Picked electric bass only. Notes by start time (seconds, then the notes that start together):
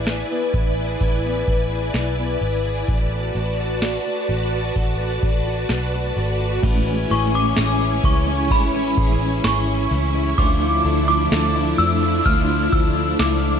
Already playing: A1
0.54 A1
1.01 A1
1.48 A1
1.94 B1
2.41 G#1
2.89 A1
3.35 A1
4.29 A1
4.76 A1
5.23 A1
5.70 B1
6.17 G#1
6.64 A1
7.11 A1
7.58 A1
8.04 C#2
8.51 A1
8.98 A1
9.45 G#1
9.91 C#2
10.38 D2
10.85 D2
11.32 D2
11.79 F2
12.26 D2
12.73 D2
13.20 C#2